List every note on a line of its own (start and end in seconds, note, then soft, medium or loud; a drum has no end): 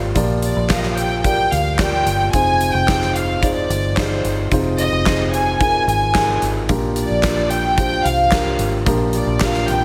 0.00 0.14 G#1 medium
0.00 0.15 F4 medium
0.00 0.15 G4 medium
0.00 0.16 A#4 medium
0.00 2.35 C5 medium
0.00 0.16 D5 medium
0.15 0.54 A#1 medium
0.15 0.93 A#2 medium
0.15 0.93 F3 medium
0.15 0.57 F4 medium
0.15 0.57 G4 medium
0.15 0.57 A#4 medium
0.15 0.58 D5 medium
0.15 kick medium
0.15 closed hi-hat medium
0.42 0.69 D5 medium
0.42 closed hi-hat medium
0.57 1.48 A#1 medium
0.69 1.11 F4 medium
0.69 1.12 G4 medium
0.69 1.12 A#4 medium
0.69 1.12 F5 medium
0.69 0.78 F5 medium
0.69 kick medium
0.69 snare medium
0.69 clap medium
0.69 closed hi-hat medium
0.77 0.84 D#5 medium
0.83 0.98 F5 medium
0.83 snare soft
0.97 1.23 G5 medium
0.97 closed hi-hat medium
1.24 1.66 F4 medium
1.24 1.66 G4 medium
1.24 1.67 A#4 medium
1.24 1.67 D5 medium
1.24 1.50 G5 medium
1.24 kick medium
1.24 closed hi-hat medium
1.52 2.02 D2 medium
1.52 1.79 F5 medium
1.52 closed hi-hat medium
1.79 2.21 F4 medium
1.79 2.21 G4 medium
1.79 2.21 A#4 medium
1.79 2.21 D5 medium
1.79 2.30 G5 medium
1.79 kick loud
1.79 snare medium
1.79 clap medium
1.79 closed hi-hat medium
2.06 2.32 G1 medium
2.06 closed hi-hat medium
2.33 2.71 F1 medium
2.33 3.11 C3 medium
2.33 2.75 D#4 medium
2.33 2.75 F4 medium
2.33 2.76 G#4 medium
2.33 2.76 C5 medium
2.33 2.71 G#5 loud
2.33 kick medium
2.33 closed hi-hat medium
2.61 closed hi-hat medium
2.73 3.66 F1 medium
2.73 3.15 G5 medium
2.88 3.30 D#4 medium
2.88 3.30 F4 medium
2.88 3.30 G#4 medium
2.88 3.30 C5 medium
2.88 kick loud
2.88 snare medium
2.88 clap medium
2.88 closed hi-hat medium
3.02 snare soft
3.15 3.42 F5 medium
3.15 closed hi-hat medium
3.42 3.84 D#4 medium
3.42 3.84 F4 medium
3.42 3.85 G#4 medium
3.42 3.85 C5 medium
3.42 3.97 D5 medium
3.42 kick medium
3.42 closed hi-hat medium
3.70 4.20 G1 medium
3.70 closed hi-hat medium
3.96 4.38 D#4 medium
3.96 4.39 F4 medium
3.96 4.39 G#4 medium
3.96 4.37 C5 medium
3.96 4.39 D5 medium
3.96 kick medium
3.96 snare medium
3.96 clap medium
3.96 closed hi-hat medium
4.24 4.50 G1 medium
4.24 closed hi-hat medium
4.51 4.89 F1 medium
4.51 5.30 C3 medium
4.51 4.93 D#4 medium
4.51 4.93 F4 medium
4.51 4.94 G#4 medium
4.51 4.94 C5 medium
4.51 kick medium
4.51 closed hi-hat medium
4.78 5.29 D#5 medium
4.78 closed hi-hat medium
4.92 5.83 F1 medium
5.05 5.47 D#4 medium
5.05 5.48 F4 medium
5.05 5.48 G#4 medium
5.05 5.48 C5 medium
5.05 kick medium
5.05 snare medium
5.05 clap medium
5.05 closed hi-hat medium
5.33 5.59 G#5 medium
5.33 closed hi-hat medium
5.60 6.02 D#4 medium
5.60 6.02 F4 medium
5.60 6.02 G#4 medium
5.60 6.03 A#4 medium
5.60 5.85 G#5 loud
5.60 kick loud
5.60 closed hi-hat medium
5.87 6.38 G#1 medium
5.87 6.38 G#5 medium
5.87 closed hi-hat medium
6.14 6.56 D#4 medium
6.14 6.56 F4 medium
6.14 6.57 G#4 medium
6.14 6.57 A#4 medium
6.14 kick medium
6.14 snare loud
6.14 clap medium
6.14 closed hi-hat medium
6.42 6.67 G#1 medium
6.42 closed hi-hat medium
6.69 7.07 A#1 medium
6.69 7.47 A#2 medium
6.69 7.47 F3 medium
6.69 7.11 D4 medium
6.69 7.11 F4 medium
6.69 7.11 G4 medium
6.69 7.12 A#4 medium
6.69 kick medium
6.69 closed hi-hat medium
6.96 7.48 D5 medium
6.96 closed hi-hat medium
7.10 8.01 A#1 medium
7.23 7.65 D4 medium
7.23 7.65 F4 medium
7.23 7.66 A#4 medium
7.23 kick medium
7.23 snare medium
7.23 clap medium
7.23 closed hi-hat medium
7.50 7.77 G5 medium
7.50 closed hi-hat medium
7.78 8.20 D4 medium
7.78 8.20 F4 medium
7.78 8.20 G4 medium
7.78 8.21 C5 medium
7.78 8.04 G5 medium
7.78 kick medium
7.78 closed hi-hat medium
8.05 8.56 C2 medium
8.05 8.60 F5 medium
8.05 closed hi-hat medium
8.31 8.74 D4 medium
8.31 8.74 F4 medium
8.31 8.74 G4 medium
8.31 8.74 A#4 medium
8.31 kick medium
8.31 snare loud
8.31 clap medium
8.31 closed hi-hat medium
8.59 8.85 G#1 medium
8.59 closed hi-hat medium
8.85 9.25 A#1 medium
8.85 9.64 A#2 medium
8.85 9.64 F3 medium
8.85 9.28 D4 medium
8.85 9.28 F4 medium
8.85 9.29 G4 medium
8.85 9.29 A#4 medium
8.85 kick medium
8.85 closed hi-hat medium
9.13 9.40 D5 medium
9.13 closed hi-hat medium
9.27 9.85 A#1 medium
9.40 9.83 D4 medium
9.40 9.83 F4 medium
9.40 9.83 G4 medium
9.40 9.83 A#4 medium
9.40 9.70 F5 medium
9.40 kick medium
9.40 snare medium
9.40 clap medium
9.40 closed hi-hat medium
9.54 snare soft
9.68 9.85 G5 medium
9.68 closed hi-hat medium
9.68 floor tom medium